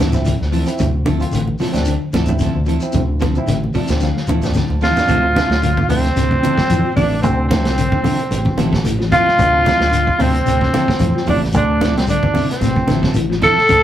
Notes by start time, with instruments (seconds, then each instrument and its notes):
0.00 fingered electric bass D2, clean electric guitar E3 C4 E4 A4, snare, closed hi-hat
0.12 tine electric piano F3 C4 E4, snare, high conga, low conga, shekere
0.25 clean electric guitar D3, kick, closed hi-hat, shekere
0.41 fingered electric bass D2, snare
0.52 clean electric guitar E3 F3 C4 E4 A4, open hi-hat, shekere
0.66 tine electric piano F3 C4 E4, closed hi-hat, shekere
0.78 fingered electric bass D2, clean electric guitar C3, kick, closed hi-hat, low conga, shekere
1.05 clean electric guitar D3 F3 C4 E4 A4, kick, closed hi-hat, high conga, shekere
1.20 tine electric piano F3 C4 F4, closed hi-hat, shekere
1.32 fingered electric bass A1, clean electric guitar D3, closed hi-hat, shekere
1.47 high conga
1.58 clean electric guitar F3 C4 E4 A4, muted fingered electric bass stroke, snare, open hi-hat, high conga, shekere
1.72 fingered electric bass D2, tine electric piano F3 C4 D4, closed hi-hat, low conga, shekere
1.76 snare
1.85 clean electric guitar D3, closed hi-hat, shekere
2.13 fingered electric bass D2, clean electric guitar E3 F3 C4 E4 A4, kick, snare, closed hi-hat, high conga, shekere
2.26 tine electric piano F3 C4 E4, high conga, low conga, shekere
2.39 clean electric guitar D3 F3 C4 E4 A4, kick, snare, closed hi-hat, shekere
2.55 fingered electric bass D2
2.66 clean electric guitar E3 F3 C4 E4 A4, closed hi-hat, shekere
2.80 tine electric piano F3 C4 E4, shekere
2.92 fingered electric bass D2, clean electric guitar C3, kick, closed hi-hat, low conga, shekere
3.20 clean electric guitar D3 F3 C4 A4, kick, snare, closed hi-hat, high conga, shekere
3.35 tine electric piano F3 C4 E4, high conga, shekere
3.47 fingered electric bass A1, clean electric guitar D3, closed hi-hat, high conga, shekere
3.64 high conga
3.74 clean electric guitar F3 C4 E4 A4, tine electric piano D5, muted fingered electric bass stroke, kick, open hi-hat, high conga, shekere
3.88 fingered electric bass D2, tine electric piano F3 C4 D4, snare, closed hi-hat, low conga, shekere
4.00 clean electric guitar D3, tine electric piano F5, snare, shekere
4.17 snare
4.27 fingered electric bass D2, clean electric guitar E3 F3 C4 E4 A4, high conga, shekere
4.42 tine electric piano F3 C4 D4, snare, high conga, low conga, shekere
4.53 clean electric guitar D3, tine electric piano A5, kick, snare, shekere
4.70 fingered electric bass D2, high conga
4.81 clean electric guitar E3 F3 C4 E4 A4, tenor saxophone F4, trumpet F4, snare, shekere
4.96 tine electric piano F3 C4 D4, snare, low conga, shekere
5.07 fingered electric bass D2, clean electric guitar C3 F3 C4 E4 A4, kick, closed hi-hat, shekere
5.35 clean electric guitar C4 E4 A4, kick, snare, closed hi-hat, high conga, shekere
5.49 fingered electric bass D2, snare
5.62 clean electric guitar D3, closed hi-hat, shekere
5.77 kick, low conga
5.89 fingered electric bass D2, clean electric guitar C3 F3 C4 E4 A4, tenor saxophone C4, trumpet C4, open hi-hat, low conga, shekere
6.04 snare, closed hi-hat
6.16 fingered electric bass D2, clean electric guitar C3, snare, closed hi-hat, high conga, shekere
6.31 kick, high conga
6.42 clean electric guitar D3 F3 C4 E4 A4, closed hi-hat, high conga, shekere
6.57 kick, snare
6.70 fingered electric bass F2, clean electric guitar E3, closed hi-hat, high conga, shekere
6.85 clean electric guitar F3
6.96 fingered electric bass A1, clean electric guitar E3 C4 E4 A4, tenor saxophone D4, trumpet D4, kick, open hi-hat, high conga, low conga, shekere
7.22 fingered electric bass D2, clean electric guitar C3, tenor saxophone C4, trumpet C4, kick, closed hi-hat, shekere
7.49 clean electric guitar F3 E4 A4, tenor saxophone C4, trumpet C4, muted clean electric guitar stroke, kick, snare, closed hi-hat, high conga, shekere
7.65 fingered electric bass C2, snare, closed hi-hat
7.77 clean electric guitar D3, closed hi-hat, shekere
7.92 kick, high conga, low conga
8.03 clean electric guitar C3 F3 C4 E4 A4, fingered electric bass D3, open hi-hat, low conga, shekere
8.19 closed hi-hat
8.31 fingered electric bass A1, muted clean electric guitar stroke, closed hi-hat, high conga, shekere
8.45 kick, high conga
8.57 fingered electric bass A1, clean electric guitar D3 F3 C4 E4 A4, snare, closed hi-hat, high conga, shekere
8.72 clean electric guitar A4, muted clean electric guitar stroke, kick, snare
8.85 clean electric guitar E3, closed hi-hat, high conga, shekere
8.99 clean electric guitar F3, snare
9.11 clean electric guitar F3 C4 E4, tenor saxophone F4, trumpet F4, kick, snare, closed hi-hat, high conga, low conga, shekere
9.26 muted fingered electric bass stroke, snare, high conga
9.38 fingered electric bass D2, clean electric guitar C3, kick, closed hi-hat, shekere
9.53 clean electric guitar C4 A4
9.65 clean electric guitar F3 C4 E4 A4, kick, snare, closed hi-hat, high conga, shekere
9.80 fingered electric bass D2, snare
9.92 clean electric guitar D3, closed hi-hat, shekere
10.07 kick
10.19 fingered electric bass D2, clean electric guitar C3 F3 C4 E4 A4, trumpet C4, tenor saxophone C4, open hi-hat, low conga, shekere
10.34 closed hi-hat
10.45 fingered electric bass D2, clean electric guitar C3, closed hi-hat, high conga, shekere
10.61 kick, snare, high conga
10.73 clean electric guitar D3 F3 C4 E4 A4, snare, closed hi-hat, high conga, shekere
10.88 kick, snare
10.99 fingered electric bass F2, clean electric guitar E3, closed hi-hat, high conga, shekere
11.15 clean electric guitar F3, snare
11.26 fingered electric bass A1, clean electric guitar E3 F3 C4 E4 A4, trumpet D4, tenor saxophone D4, kick, open hi-hat, high conga, low conga, shekere
11.42 snare, high conga
11.53 fingered electric bass D2, clean electric guitar C3, trumpet D4, tenor saxophone D4, kick, closed hi-hat, shekere
11.80 clean electric guitar F3 C4 E4 A4, kick, snare, closed hi-hat, high conga, shekere
11.95 fingered electric bass C2, trumpet C4, tenor saxophone C4, snare, closed hi-hat
12.07 clean electric guitar D3, trumpet D4, tenor saxophone D4, closed hi-hat, shekere
12.23 kick, high conga, low conga
12.34 clean electric guitar C3 C4 E4 A4, fingered electric bass D3, open hi-hat, low conga, shekere
12.51 trumpet C4, tenor saxophone C4, snare, closed hi-hat
12.61 fingered electric bass A1, clean electric guitar C3, snare, closed hi-hat, high conga, shekere
12.76 kick, high conga
12.87 fingered electric bass A1, clean electric guitar D3 F3 C4 E4 A4, snare, closed hi-hat, high conga, shekere
13.01 clean electric guitar C4 E4 A4, kick, snare
13.14 clean electric guitar E3, closed hi-hat, high conga, shekere
13.30 clean electric guitar F3, snare
13.41 clean electric guitar E3 F3 C4 E4 A4, trumpet A4, tenor saxophone A4, kick, snare, closed hi-hat, high conga, low conga, shekere
13.55 muted fingered electric bass stroke, snare
13.69 fingered electric bass D2, clean electric guitar C3, kick, closed hi-hat, shekere